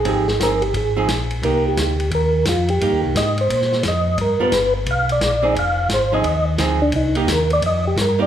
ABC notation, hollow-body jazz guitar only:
X:1
M:4/4
L:1/8
Q:"Swing" 1/4=175
K:Cm
V:1 name="Hollow-body jazz guitar"
[F,CEA] z [F,CEA] z2 [F,CEA] z2 | [B,EG]3 z4 z | [B,EG]3 z4 z | z [G,=B,F^A] z4 z [F,CE_A] |
z3 [F,CEA] z2 [F,CEA] z | z [B,EG] z4 z [B,EG] |]